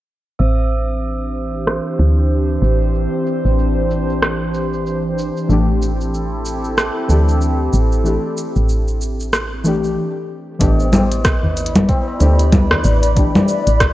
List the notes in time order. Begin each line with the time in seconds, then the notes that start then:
0.39 A1 E3 C4 D4 G4 C5
0.71 shaker
1.03 shaker
1.35 shaker
1.54 shaker
1.67 cross-stick, shaker
1.99 D2, shaker
2.18 shaker
2.31 shaker
2.62 A1, shaker
2.82 shaker
2.94 shaker
3.26 shaker
3.45 A1, shaker
3.59 shaker
3.91 shaker
4.09 shaker
4.22 cross-stick, shaker
4.54 shaker
4.73 shaker
4.87 shaker
5.18 shaker
5.37 shaker
5.49 A1 E3 A3 C4 D4 E4 G4 A4, shaker
5.82 shaker
6.01 shaker
6.14 shaker
6.46 shaker
6.65 shaker
6.78 cross-stick, shaker
7.08 D2 E3 A3 D4, shaker
7.13 G4
7.29 shaker
7.42 shaker
7.73 A1, shaker
7.92 shaker
8.04 E3 A3 D4 G4, shaker
8.37 shaker
8.56 A1, shaker
8.69 shaker
8.88 shaker
9.01 shaker
9.20 shaker
9.33 cross-stick, shaker
9.64 E3 A3 D4 G4, shaker
9.83 shaker
10.59 A1 E3 A3 B3 D4 E4 B4 D5 B5, kick, closed hi-hat, shaker
10.63 G4
10.80 tabla tin, shaker
10.93 tabla na, low conga, shaker
11.11 closed hi-hat, shaker
11.25 kick, cross-stick, closed hi-hat, shaker
11.43 tabla tin, tabla ge
11.57 closed hi-hat, shaker
11.66 closed hi-hat
11.75 closed hi-hat, low conga, shaker
11.89 kick, closed hi-hat, tabla na, shaker
12.08 tabla na
12.19 D2 E3 A3 D4, closed hi-hat, tabla na, tabla tin, shaker
12.23 G4
12.40 closed hi-hat, shaker
12.53 kick, closed hi-hat, low conga, shaker
12.71 cross-stick, tabla tin, tabla ge
12.84 A1, shaker
13.03 closed hi-hat, shaker
13.15 E3 A3 D4 G4, kick, closed hi-hat, shaker
13.35 tabla tin, low conga, shaker
13.48 shaker
13.67 A1, closed hi-hat, shaker
13.80 kick, cross-stick, closed hi-hat, shaker